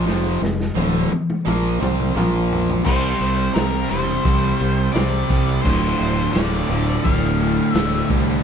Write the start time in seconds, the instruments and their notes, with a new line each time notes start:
0.05 fingered electric bass F1, distorted electric guitar F2 C3 F3, snare
0.41 fingered electric bass F1, distorted electric guitar F2 C3, snare
0.60 snare
0.76 fingered electric bass D1, distorted electric guitar D2 A2 D3, high tom
1.11 muted overdriven electric guitar stroke, muted distorted electric guitar stroke, muted fingered electric bass stroke, high tom
1.30 mid tom
1.47 fingered electric bass A#1, distorted electric guitar A#2 F3 A#3, mid tom
1.80 fingered electric bass C2, distorted electric guitar C3 G3 C4, mid tom
2.00 mid tom
2.16 fingered electric bass A#1, distorted electric guitar A#2 F3 A#3, mid tom
2.53 floor tom
2.69 floor tom
2.85 fingered electric bass C2, distorted electric guitar C3 G3 C4, overdriven electric guitar E4 G4 C5, lead electric guitar C5, kick, crash, tambourine
3.04 tambourine
3.21 fingered electric bass C2, crash
3.54 fingered electric bass C2, distorted electric guitar C3 G3 C4, lead electric guitar A#4, snare, tambourine, crash
3.90 fingered electric bass E1, distorted electric guitar C3 G3 C4, lead electric guitar C5, tambourine, crash
4.09 tambourine
4.25 fingered electric bass C2, distorted electric guitar C3 G3 C4, kick, crash
4.43 tambourine
4.59 fingered electric bass C2, tambourine, crash
4.76 tambourine
4.93 fingered electric bass C2, distorted electric guitar C3 G3 C4, lead electric guitar D5, snare, tambourine, crash
5.13 tambourine
5.30 fingered electric bass C2, distorted electric guitar C3 G3 C4, kick, tambourine, crash
5.48 tambourine
5.62 fingered electric bass D1, distorted electric guitar D2 A2 D3, lead electric guitar C5, kick, tambourine, crash
5.67 overdriven electric guitar A3 C4 F4
5.84 tambourine
6.00 fingered electric bass D1, crash
6.33 fingered electric bass D1, distorted electric guitar D2 A2 D3, lead electric guitar D5, snare, tambourine, crash
6.69 fingered electric bass D1, distorted electric guitar D2 A2 D3, tambourine, crash
6.89 tambourine
7.04 fingered electric bass D1, distorted electric guitar D2 A2 D3, lead electric guitar F5, kick, crash
7.23 tambourine
7.40 tambourine, crash
7.59 tambourine
7.72 fingered electric bass D1, distorted electric guitar D2 A2 D3, lead electric guitar E5, snare, tambourine, crash
7.94 tambourine
8.09 fingered electric bass C2, distorted electric guitar D2 A2 D3, kick, crash
8.29 tambourine